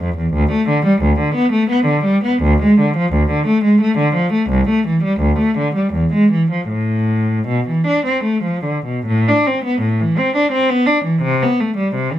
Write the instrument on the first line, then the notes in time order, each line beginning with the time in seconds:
cello
0.01 F2
0.17 E2
0.34 D2
0.51 A3
0.69 D3
0.85 G3
1.02 D2
1.19 D3
1.35 B3
1.52 A3
1.70 B3
1.86 D3
2.04 G3
2.24 B3
2.42 D2
2.62 G#3
2.80 D3
2.97 F3
3.13 D2
3.30 D3
3.47 A3
3.64 G#3
3.81 A3
3.98 D3
4.15 F3
4.33 A3
4.50 C2
4.69 A3
4.87 E3
5.04 G3
5.20 D2
5.39 A3
5.58 D3
5.75 G3
5.93 E2
6.13 G#3
6.31 E3
6.51 F3
6.69 A2
7.47 B2
7.68 E3
7.87 D4
8.06 C4
8.24 A3
8.43 F3
8.64 D3
8.86 B2
9.06 A2
9.28 D4
9.47 C4
9.65 B3
9.81 A2
10.00 E3
10.18 C4
10.36 D4
10.52 C4
10.69 B3
10.86 D4
11.05 E3
11.22 C3
11.42 B3
11.60 A3
11.77 G3
11.95 C3
12.12 E3